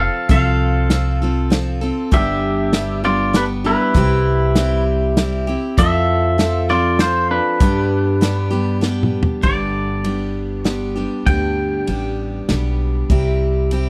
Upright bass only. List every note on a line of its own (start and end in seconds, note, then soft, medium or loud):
0.29 1.90 C2 medium
2.12 3.72 G1 medium
3.95 5.55 C2 medium
5.78 7.38 F2 medium
7.61 9.21 G2 medium
9.44 11.04 G1 medium
11.26 11.80 D2 medium
11.88 12.40 A1 medium
12.49 13.01 B1 medium
13.10 13.89 C2 medium